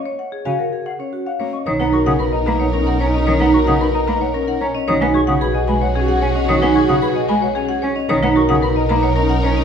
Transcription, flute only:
X:1
M:3/4
L:1/16
Q:1/4=112
K:F#
V:1 name="Flute"
z3 g f z e z2 f z c' | [K:B] d' f c' d' b a b f z2 a z | d' f c' d' b a b f z2 a z | d' f c' d' b g b f g z g z |
d' f c' d' b g b f g z g z | d' f c' d' b a b f a z a z |]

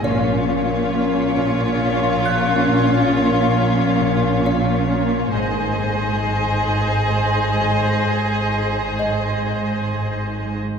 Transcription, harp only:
X:1
M:3/4
L:1/8
Q:1/4=67
K:Bbm
V:1 name="Harp" clef=bass
B,, B,, B, B,, B,, B, | B,, B,, B, B,, B,, B, | A,, A,, A, A,, A,, A, | A,, A,, A, A,, A,, A, |]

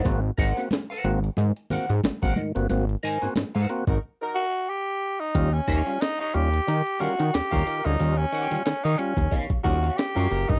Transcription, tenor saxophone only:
X:1
M:4/4
L:1/16
Q:"Swing 16ths" 1/4=91
K:Ebmix
V:1 name="Tenor saxophone"
z16 | z8 z2 _G2 =G3 E- | E D3 E E G4 _G2 =G3 E- | E D3 D E D2 z2 _G2 =G3 E |]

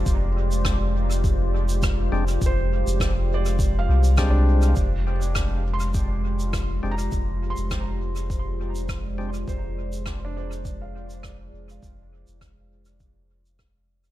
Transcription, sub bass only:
X:1
M:4/4
L:1/16
Q:"Swing 16ths" 1/4=102
K:Fdor
V:1 name="Sub bass" clef=bass
F,,,12- F,,,2 F,,,2 | F,,,3 F,,,6- F,,, C,,6 | F,,,12- F,,,2 F,,,2 | F,,,3 F,,,12- F,,, |
F,,,12- F,,,2 F,,,2 | F,,,3 F,,,12- F,,, |]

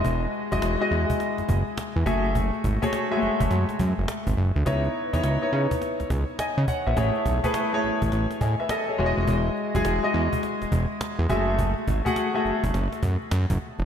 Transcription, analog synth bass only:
X:1
M:4/4
L:1/16
Q:"Swing 16ths" 1/4=104
K:F#dor
V:1 name="Analog synth bass" clef=bass
E,,,2 z F,,, E,,, z E,, z2 F,,, F,,, z2 E,, F,,,2- | F,,,2 G,,, z3 F,,, F,,, F,, z F,, F,,, z G,,, F,,, =D,, | C,,2 z E,, C,, z C, z2 C,, C,, z2 C, z ^A,,, | A,,, z B,,, z3 A,,, A,,, A,,, z A,, z3 E,,, ^E,,, |
E,,,2 z F,,, E,,, z E,, z2 E,,, E,,, z2 E,, F,,,2- | F,,,2 G,,, z3 F,,, F,,, F,,, z F,, z F,, F,,, z ^E,,, |]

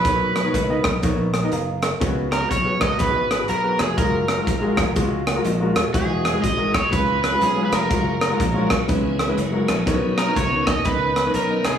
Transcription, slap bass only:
X:1
M:4/4
L:1/8
Q:"Swing" 1/4=122
K:F#
V:1 name="Slap bass" clef=bass
B,,,2 C,, B,,, A,,,2 F,,,2 | C,,2 B,,, C,, G,,,2 B,,, E,,, | F,,,2 G,,, E,,, C,,2 A,,, D,,, | =E,,,2 G,,,2 C,,2 B,,, ^E,,, |
F,,,2 A,,, B,,, C,,2 F,,, A,,, | B,,,2 C,, D,, C,,2 B,,, ^B,,, |]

